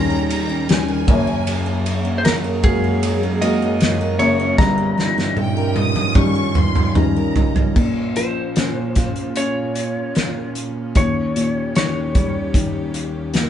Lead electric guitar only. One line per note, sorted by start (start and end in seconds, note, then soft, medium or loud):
2.18 2.25 C5 medium
2.25 2.35 A#4 medium
2.64 3.44 G#4 medium
3.42 4.19 D#5 loud
4.19 4.55 C#5 loud
4.58 6.91 A#5 loud
8.17 9.32 C5 medium
9.37 10.52 C#5 medium
10.97 11.75 C#5 medium
11.76 13.31 C#5 medium